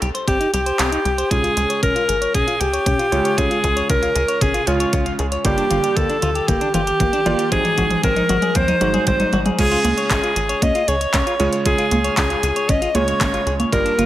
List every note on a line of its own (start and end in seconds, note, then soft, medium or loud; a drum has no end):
0.02 0.11 C2 medium
0.02 0.08 G4 medium
0.02 closed hi-hat medium
0.15 0.27 C5 medium
0.15 closed hi-hat soft
0.27 0.46 G1 medium
0.27 0.39 C4 medium
0.27 0.52 G4 loud
0.27 kick loud
0.27 closed hi-hat loud
0.40 0.47 D#4 loud
0.40 closed hi-hat soft
0.53 0.72 C2 medium
0.53 0.60 G4 medium
0.53 1.33 G4 loud
0.53 closed hi-hat medium
0.66 0.79 C5 medium
0.66 closed hi-hat soft
0.79 0.98 C2 medium
0.79 0.90 C4 medium
0.79 clap loud
0.79 closed hi-hat medium
0.92 0.99 D#4 loud
0.92 closed hi-hat soft
1.05 1.24 C2 medium
1.05 1.12 G4 medium
1.05 closed hi-hat soft
1.18 1.30 C5 medium
1.18 closed hi-hat soft
1.31 1.50 C#2 loud
1.31 3.09 C#3 medium
1.31 3.09 G#3 medium
1.31 1.42 C#4 medium
1.31 3.09 C#4 medium
1.31 3.09 F4 medium
1.31 1.82 G#4 loud
1.31 3.09 C#5 medium
1.31 kick loud
1.31 closed hi-hat loud
1.31 mid tom soft
1.44 1.50 F4 loud
1.44 closed hi-hat soft
1.57 1.66 C#2 medium
1.57 1.64 G#4 medium
1.57 closed hi-hat medium
1.70 1.82 C#5 medium
1.70 closed hi-hat soft
1.83 1.92 G#1 medium
1.83 1.94 C#4 medium
1.83 2.31 A#4 loud
1.83 kick loud
1.83 closed hi-hat medium
1.83 mid tom soft
1.95 2.02 F4 medium
1.95 closed hi-hat soft
2.08 2.27 G#1 medium
2.08 2.15 G#4 medium
2.08 closed hi-hat medium
2.21 2.34 C#5 medium
2.21 closed hi-hat soft
2.34 2.44 C#2 medium
2.34 2.46 C#4 medium
2.34 2.62 G#4 loud
2.34 kick loud
2.34 closed hi-hat loud
2.34 mid tom medium
2.47 2.54 F4 loud
2.47 closed hi-hat soft
2.60 2.79 C#2 medium
2.60 3.40 G4 loud
2.60 2.67 G#4 medium
2.60 closed hi-hat medium
2.73 2.86 C#5 medium
2.73 closed hi-hat soft
2.86 2.95 C#2 loud
2.86 2.97 C#4 medium
2.86 kick loud
2.86 closed hi-hat medium
2.86 mid tom medium
2.99 3.06 F4 loud
2.99 closed hi-hat soft
3.12 3.21 C#2 medium
3.12 3.35 C#3 medium
3.12 3.35 G#3 medium
3.12 3.35 C#4 medium
3.12 3.35 F4 medium
3.12 3.19 G#4 medium
3.12 3.35 C#5 loud
3.12 closed hi-hat soft
3.25 3.37 C#5 medium
3.25 closed hi-hat soft
3.38 3.47 C#2 medium
3.38 4.64 C#3 medium
3.38 4.64 G#3 medium
3.38 4.64 C#4 medium
3.38 3.49 C#4 medium
3.38 4.64 F4 medium
3.38 3.89 G#4 loud
3.38 4.64 C#5 medium
3.38 kick loud
3.38 closed hi-hat loud
3.38 mid tom medium
3.51 3.57 F4 loud
3.51 closed hi-hat soft
3.64 3.82 C#2 loud
3.64 3.70 G#4 medium
3.64 kick medium
3.64 closed hi-hat medium
3.76 3.89 C#5 medium
3.76 closed hi-hat soft
3.89 4.08 C#2 medium
3.89 4.01 C#4 medium
3.89 4.43 A#4 loud
3.89 kick loud
3.89 closed hi-hat medium
3.89 mid tom medium
4.02 4.09 F4 medium
4.02 closed hi-hat soft
4.15 4.25 C#2 loud
4.15 4.22 G#4 medium
4.15 closed hi-hat medium
4.28 4.41 C#5 medium
4.28 closed hi-hat soft
4.41 4.60 G#1 medium
4.41 4.52 C#4 medium
4.41 4.69 G#4 loud
4.41 kick loud
4.41 closed hi-hat loud
4.41 mid tom medium
4.54 4.61 F4 loud
4.54 closed hi-hat soft
4.67 4.86 C#2 medium
4.67 5.42 C#3 medium
4.67 5.42 G#3 medium
4.67 5.42 C#4 medium
4.67 5.42 F4 medium
4.67 5.18 F4 medium
4.67 4.74 G#4 medium
4.67 5.42 C#5 medium
4.67 closed hi-hat medium
4.80 4.92 C#5 medium
4.80 closed hi-hat soft
4.93 5.12 C#2 medium
4.93 5.04 C#4 medium
4.93 kick loud
4.93 closed hi-hat medium
4.93 mid tom medium
5.06 5.13 F4 loud
5.06 closed hi-hat soft
5.19 5.38 C#2 medium
5.19 5.26 G#4 medium
5.19 closed hi-hat soft
5.32 5.44 C#5 medium
5.32 closed hi-hat soft
5.45 5.63 G1 loud
5.45 7.23 G2 medium
5.45 5.56 A#3 medium
5.45 7.23 A#3 medium
5.45 7.23 F4 medium
5.45 5.98 G4 loud
5.45 7.23 G4 medium
5.45 7.23 D5 medium
5.45 kick loud
5.45 closed hi-hat medium
5.45 mid tom medium
5.57 5.64 D4 loud
5.57 closed hi-hat soft
5.71 5.80 G1 medium
5.71 5.77 F4 medium
5.71 closed hi-hat medium
5.71 mid tom medium
5.84 5.96 G4 medium
5.84 closed hi-hat soft
5.96 6.06 D2 medium
5.96 6.08 A#3 medium
5.96 6.50 A4 loud
5.96 kick loud
5.96 closed hi-hat medium
5.96 mid tom medium
6.09 6.16 D4 loud
6.09 closed hi-hat soft
6.22 6.41 D2 medium
6.22 6.29 F4 medium
6.22 closed hi-hat medium
6.22 mid tom medium
6.35 6.48 G4 medium
6.35 closed hi-hat soft
6.48 6.58 G1 medium
6.48 6.59 A#3 medium
6.48 6.74 G4 medium
6.48 kick loud
6.48 closed hi-hat medium
6.48 mid tom medium
6.61 6.68 D4 loud
6.61 closed hi-hat soft
6.74 6.93 G1 medium
6.74 6.81 F4 medium
6.74 7.48 G4 loud
6.74 closed hi-hat medium
6.74 mid tom medium
6.87 6.99 G4 medium
6.87 closed hi-hat soft
7.00 7.09 G1 medium
7.00 7.11 A#3 medium
7.00 kick loud
7.00 closed hi-hat medium
7.00 mid tom medium
7.13 7.20 D4 medium
7.13 closed hi-hat soft
7.26 7.35 G1 medium
7.26 7.49 A#3 medium
7.26 7.32 F4 medium
7.26 7.49 F4 medium
7.26 7.49 G4 medium
7.26 7.49 D5 loud
7.26 closed hi-hat soft
7.26 mid tom medium
7.39 7.51 G4 medium
7.39 closed hi-hat soft
7.52 7.61 G#1 medium
7.52 8.78 G#2 medium
7.52 8.78 G#3 medium
7.52 7.63 C4 medium
7.52 8.78 D#4 medium
7.52 8.78 F#4 medium
7.52 8.00 G#4 loud
7.52 8.78 C5 medium
7.52 kick loud
7.52 closed hi-hat medium
7.52 mid tom medium
7.64 7.71 D#4 loud
7.64 closed hi-hat soft
7.64 mid tom medium
7.78 7.96 G#1 loud
7.78 7.84 F#4 medium
7.78 kick medium
7.78 closed hi-hat medium
7.78 mid tom medium
7.91 8.03 G#4 medium
7.91 closed hi-hat soft
7.91 mid tom medium
8.03 8.22 G#1 medium
8.03 8.15 C4 medium
8.03 8.57 A#4 loud
8.03 kick loud
8.03 closed hi-hat medium
8.03 mid tom loud
8.16 8.23 D#4 loud
8.16 closed hi-hat soft
8.16 mid tom medium
8.29 8.39 G#1 loud
8.29 8.36 F#4 medium
8.29 closed hi-hat medium
8.29 mid tom loud
8.42 8.55 G#4 medium
8.42 closed hi-hat soft
8.42 mid tom medium
8.55 8.74 D#2 medium
8.55 8.66 C4 medium
8.55 9.07 C5 loud
8.55 kick loud
8.55 closed hi-hat medium
8.55 mid tom loud
8.68 8.75 D#4 loud
8.68 closed hi-hat soft
8.68 mid tom medium
8.81 9.00 G#1 medium
8.81 9.56 G#2 medium
8.81 9.56 G#3 medium
8.81 9.56 D#4 medium
8.81 8.88 F#4 medium
8.81 9.56 F#4 medium
8.81 9.56 C5 medium
8.81 closed hi-hat medium
8.81 mid tom loud
8.94 9.06 G#4 medium
8.94 closed hi-hat soft
8.94 mid tom medium
9.07 9.26 G#1 medium
9.07 9.18 C4 medium
9.07 9.43 C5 loud
9.07 kick loud
9.07 closed hi-hat medium
9.07 mid tom loud
9.20 9.26 D#4 loud
9.20 closed hi-hat soft
9.20 mid tom medium
9.33 9.51 G#1 medium
9.33 9.39 F#4 medium
9.33 closed hi-hat soft
9.33 mid tom loud
9.46 9.58 G#4 medium
9.46 closed hi-hat soft
9.46 mid tom loud
9.59 9.77 C#2 loud
9.59 11.37 C#3 medium
9.59 11.37 G#3 medium
9.59 9.70 C#4 medium
9.59 11.37 C#4 medium
9.59 11.37 F4 medium
9.59 10.07 G#4 loud
9.59 11.37 C#5 medium
9.59 kick loud
9.59 closed hi-hat loud
9.59 crash loud
9.72 9.78 F4 loud
9.72 closed hi-hat soft
9.84 9.94 C#2 medium
9.84 9.91 G#4 medium
9.84 closed hi-hat medium
9.84 high conga medium
9.97 10.10 C#5 medium
9.97 closed hi-hat soft
10.10 10.20 G#1 medium
10.10 10.21 C#4 medium
10.10 10.64 G#4 medium
10.10 kick loud
10.10 clap loud
10.10 closed hi-hat medium
10.23 10.30 F4 loud
10.23 closed hi-hat soft
10.36 10.55 G#1 medium
10.36 10.43 G#4 medium
10.36 closed hi-hat medium
10.49 10.61 C#5 medium
10.49 closed hi-hat soft
10.62 10.71 C#2 medium
10.62 10.73 C#4 medium
10.62 10.90 D#5 loud
10.62 kick loud
10.62 closed hi-hat loud
10.62 high conga medium
10.75 10.82 F4 loud
10.75 closed hi-hat soft
10.88 11.06 C#2 medium
10.88 10.95 G#4 medium
10.88 11.14 C#5 medium
10.88 closed hi-hat medium
11.01 11.13 C#5 medium
11.01 closed hi-hat soft
11.14 11.23 C#2 medium
11.14 11.25 C#4 medium
11.14 11.50 C#5 loud
11.14 kick loud
11.14 clap loud
11.14 closed hi-hat loud
11.27 11.33 F4 loud
11.27 closed hi-hat soft
11.40 11.49 C#2 medium
11.40 11.62 C#3 loud
11.40 11.62 G#3 medium
11.40 11.62 C#4 medium
11.40 11.62 F4 medium
11.40 11.46 G#4 medium
11.40 11.62 C#5 loud
11.40 closed hi-hat soft
11.53 11.65 C#5 medium
11.53 closed hi-hat soft
11.66 11.75 C#2 medium
11.66 12.92 C#3 medium
11.66 12.92 G#3 medium
11.66 11.77 C#4 medium
11.66 12.92 C#4 medium
11.66 12.92 F4 medium
11.66 12.14 G#4 loud
11.66 12.92 C#5 medium
11.66 kick loud
11.66 closed hi-hat loud
11.78 11.85 F4 loud
11.78 closed hi-hat soft
11.91 12.10 C#2 loud
11.91 11.98 G#4 medium
11.91 closed hi-hat medium
11.91 high conga medium
12.04 12.17 C#5 medium
12.04 closed hi-hat soft
12.17 12.36 C#2 medium
12.17 12.28 C#4 medium
12.17 12.71 G#4 loud
12.17 kick loud
12.17 clap loud
12.17 closed hi-hat medium
12.30 12.37 F4 loud
12.30 closed hi-hat soft
12.43 12.52 C#2 loud
12.43 12.50 G#4 medium
12.43 closed hi-hat medium
12.56 12.68 C#5 medium
12.56 closed hi-hat soft
12.69 12.88 G#1 medium
12.69 12.80 C#4 medium
12.69 12.96 D#5 loud
12.69 kick loud
12.69 closed hi-hat medium
12.82 12.88 F4 loud
12.82 closed hi-hat soft
12.95 13.13 C#2 medium
12.95 13.69 C#3 medium
12.95 13.69 G#3 medium
12.95 13.69 C#4 medium
12.95 13.69 F4 medium
12.95 13.02 G#4 medium
12.95 13.20 C#5 loud
12.95 13.69 C#5 medium
12.95 closed hi-hat medium
12.95 high conga medium
13.08 13.20 C#5 medium
13.08 closed hi-hat soft
13.21 13.39 G#1 medium
13.21 13.32 C#4 medium
13.21 13.57 C#5 loud
13.21 kick loud
13.21 clap loud
13.21 closed hi-hat medium
13.21 high conga medium
13.34 13.40 F4 loud
13.34 closed hi-hat soft
13.46 13.65 C#2 medium
13.46 13.53 G#4 medium
13.46 closed hi-hat soft
13.59 13.72 C#5 medium
13.59 closed hi-hat soft
13.59 high conga medium
13.73 13.91 G1 loud
13.73 14.06 G2 medium
13.73 13.84 A#3 medium
13.73 14.06 A#3 medium
13.73 14.06 F4 medium
13.73 14.06 G4 medium
13.73 14.06 A#4 loud
13.73 14.06 D5 medium
13.73 kick loud
13.73 closed hi-hat medium
13.85 13.92 D4 loud
13.85 closed hi-hat soft
13.98 14.06 G1 medium
13.98 14.05 F4 medium
13.98 closed hi-hat medium
13.98 high conga medium